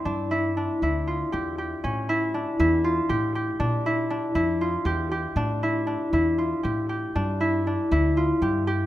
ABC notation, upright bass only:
X:1
M:7/8
L:1/8
Q:1/4=119
K:Gdor
V:1 name="Upright bass" clef=bass
G,,3 D,,2 E,,2 | A,,3 E,,2 A,,2 | B,,3 F,,2 E,,2 | A,,3 E,,2 A,,2 |
G,,3 D,,2 G,,2 |]